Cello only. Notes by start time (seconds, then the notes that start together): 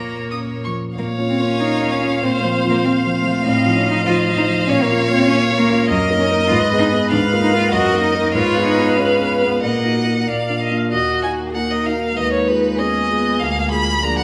Already playing: A#2
0.98 A#3
1.29 C4
1.44 C#4
1.60 D#4
1.92 C#4
2.23 C4
2.39 A3
2.70 A#3
2.84 C4
3.16 A3
3.46 C4
3.76 C#4
3.91 D#4
4.06 F4
4.37 D#4
4.67 C#4
4.83 A#3
5.12 C4
5.28 C#4
5.57 A#3
5.88 A#3
6.19 C#4
6.32 D#4
6.48 F4
6.79 D#4
7.11 D4
7.42 D#4
7.57 F4
7.73 F#4
8.03 D#4
8.35 F4
8.66 D#4
8.97 C#4
9.46 B3
9.62 A#3
10.90 A#3
12.17 G#3
13.41 G#3
14.02 F3